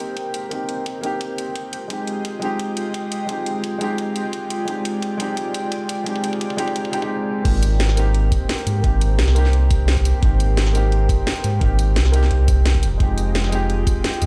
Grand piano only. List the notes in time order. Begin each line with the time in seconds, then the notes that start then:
Already playing: A#3 C4 D#4 G4
0.49 A#3 C4 D#4
0.54 G4
1.01 A#3 C4 D#4
1.06 G4
1.88 G#3 C4 D#4
1.93 G4
2.40 G#3 C4 D#4
2.44 G4
3.26 G#3 C4 D#4
3.31 G4
3.79 G#3 C4 D#4
3.83 G4
4.65 G#3 C4 D#4
4.70 G4
5.17 G#3 C4 D#4
5.22 G4
6.04 G#3 C4 D#4
6.09 G4
6.57 G#3 C4 D#4 G4
6.92 G#3 C4 D#4 G4
7.01 G#3 C4 D#4 G4
7.43 A#3 C4 D#4
7.48 G4
7.95 A#3 C4 D#4
7.99 G4
8.81 A#3 C4 D#4
8.86 G4
9.33 A#3 C4 D#4
9.38 G4
10.20 A#3 C4 D#4
10.25 G4
10.72 A#3 C4 D#4
10.77 G4
11.59 A#3 C4 D#4
11.64 G4
12.11 A#3 C4 D#4
12.15 G4
12.98 G#3 C4 D#4
13.03 G4
13.50 G#3 C4 D#4
13.55 G4